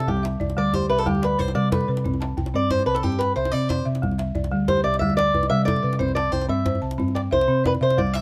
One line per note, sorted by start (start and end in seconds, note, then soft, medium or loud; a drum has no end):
0.00 0.23 D5 medium
0.00 0.22 E5 medium
0.00 djembe slap medium
0.07 0.37 C2 medium
0.07 0.40 G3 medium
0.07 0.23 G4 medium
0.07 djembe bass medium
0.17 djembe tone soft
0.23 0.73 E5 medium
0.23 djembe slap medium
0.33 djembe slap soft
0.40 0.55 C2 medium
0.40 0.89 D5 medium
0.40 djembe bass medium
0.50 djembe slap medium
0.50 djembe tone medium
0.56 0.86 D2 medium
0.56 0.90 G3 medium
0.56 0.74 D5 loud
0.66 djembe slap soft
0.73 1.22 G4 medium
0.73 0.89 C5 medium
0.73 djembe slap medium
0.73 djembe bass medium
0.82 djembe tone medium
0.89 1.04 C2 medium
0.89 0.99 B4 medium
0.89 1.39 E5 medium
0.98 1.07 A4 medium
0.98 djembe slap medium
1.06 1.35 D2 medium
1.06 1.39 G3 medium
1.06 1.23 G4 medium
1.06 djembe bass medium
1.15 djembe tone soft
1.22 1.39 B4 medium
1.22 1.72 D5 medium
1.22 djembe slap medium
1.39 1.54 C2 medium
1.39 1.87 B4 medium
1.39 1.54 C5 medium
1.39 djembe slap soft
1.39 djembe bass medium
1.48 djembe slap medium
1.48 djembe tone medium
1.55 1.85 C3 medium
1.55 1.88 G3 medium
1.55 1.71 D5 medium
1.72 2.21 A4 medium
1.72 1.87 B4 medium
1.72 djembe slap medium
1.72 djembe bass medium
1.81 djembe tone medium
1.88 2.06 C3 medium
1.88 2.21 B4 medium
1.97 djembe slap medium
2.04 2.34 C2 medium
2.04 2.37 C4 medium
2.04 djembe slap soft
2.04 djembe bass medium
2.14 djembe tone medium
2.21 2.70 A5 medium
2.21 djembe slap medium
2.37 2.52 C2 medium
2.37 2.87 G5 medium
2.37 djembe bass medium
2.46 djembe slap medium
2.46 djembe tone medium
2.54 2.84 G2 medium
2.54 2.87 C4 medium
2.54 2.70 D5 medium
2.54 djembe slap soft
2.70 3.20 C5 medium
2.70 2.86 C5 medium
2.70 djembe slap medium
2.70 djembe bass medium
2.79 djembe tone medium
2.86 3.02 C2 medium
2.86 2.95 B4 medium
2.86 3.36 A5 medium
2.95 3.03 A4 medium
2.95 djembe slap medium
3.03 3.33 G2 medium
3.03 3.36 C4 medium
3.03 3.20 G4 medium
3.03 djembe bass medium
3.12 djembe tone medium
3.19 3.35 B4 medium
3.19 3.69 G5 medium
3.19 djembe slap medium
3.36 3.51 C2 medium
3.36 3.52 C5 medium
3.36 3.84 E5 medium
3.45 djembe slap medium
3.45 djembe tone soft
3.52 3.83 C3 medium
3.52 3.86 C4 medium
3.52 3.69 D5 medium
3.69 3.86 C5 medium
3.69 4.19 D5 medium
3.69 djembe slap medium
3.69 djembe bass medium
3.78 djembe slap soft
3.78 djembe tone medium
3.85 4.04 C3 medium
3.85 4.17 E5 medium
3.85 djembe slap soft
3.95 djembe slap medium
4.02 4.32 C2 medium
4.02 4.35 G3 medium
4.02 djembe slap soft
4.02 djembe bass medium
4.11 djembe tone medium
4.18 4.68 E5 medium
4.18 djembe slap medium
4.35 4.50 C2 medium
4.35 4.84 D5 medium
4.35 djembe bass medium
4.44 djembe slap medium
4.44 djembe tone medium
4.51 4.81 D2 medium
4.51 4.84 G3 medium
4.51 djembe slap soft
4.68 5.17 G4 medium
4.68 4.83 C5 medium
4.68 djembe slap medium
4.68 djembe bass medium
4.77 djembe tone medium
4.84 4.99 C2 medium
4.84 4.99 D5 medium
4.84 5.34 E5 medium
4.94 djembe slap medium
4.99 5.31 D2 loud
4.99 5.34 G3 medium
4.99 5.16 E5 loud
4.99 djembe bass medium
5.10 djembe tone soft
5.17 5.49 D5 loud
5.17 5.67 D5 medium
5.17 djembe slap medium
5.34 5.49 C2 medium
5.34 5.82 B4 medium
5.34 djembe bass medium
5.43 djembe slap medium
5.43 djembe tone medium
5.50 5.80 C3 medium
5.50 5.83 G3 medium
5.50 5.65 E5 medium
5.50 djembe slap soft
5.65 6.16 A4 medium
5.65 5.99 D5 loud
5.65 djembe slap medium
5.65 djembe bass medium
5.76 djembe slap soft
5.76 djembe tone medium
5.83 6.01 C3 medium
5.83 6.16 B4 medium
5.83 djembe slap soft
5.93 djembe slap medium
5.99 6.29 C2 medium
5.99 6.32 C4 medium
5.99 6.15 C5 medium
5.99 djembe slap soft
5.99 djembe bass medium
6.09 djembe tone medium
6.15 6.32 D5 medium
6.15 6.66 A5 medium
6.15 djembe slap medium
6.32 6.48 C2 medium
6.32 6.49 C5 medium
6.32 6.82 G5 medium
6.32 djembe bass medium
6.41 djembe slap medium
6.41 djembe tone medium
6.49 6.79 G2 medium
6.49 6.82 C4 medium
6.49 6.80 E5 medium
6.49 djembe slap soft
6.65 7.15 C5 medium
6.65 djembe slap medium
6.65 djembe bass medium
6.75 djembe tone medium
6.82 6.97 C2 medium
6.82 7.32 A5 medium
6.91 djembe slap medium
6.98 7.28 G2 medium
6.98 7.31 C4 medium
6.98 djembe bass medium
7.08 djembe tone soft
7.15 7.20 D5 medium
7.15 7.65 G5 medium
7.15 djembe slap medium
7.31 7.47 C2 medium
7.31 7.63 C5 medium
7.31 7.80 E5 medium
7.31 djembe bass medium
7.41 djembe slap medium
7.48 7.78 C3 medium
7.48 7.81 C4 medium
7.64 7.72 B4 medium
7.64 8.14 D5 medium
7.64 djembe slap medium
7.64 djembe bass medium
7.74 djembe slap soft
7.74 djembe tone medium
7.81 7.99 C3 medium
7.81 7.99 C5 medium
7.81 8.13 E5 medium
7.81 djembe slap soft
7.90 djembe slap medium
7.97 8.21 C2 medium
7.97 8.21 G3 medium
7.97 8.14 D5 medium
7.97 djembe bass medium
8.07 djembe tone medium
8.14 8.21 E5 medium
8.14 djembe slap medium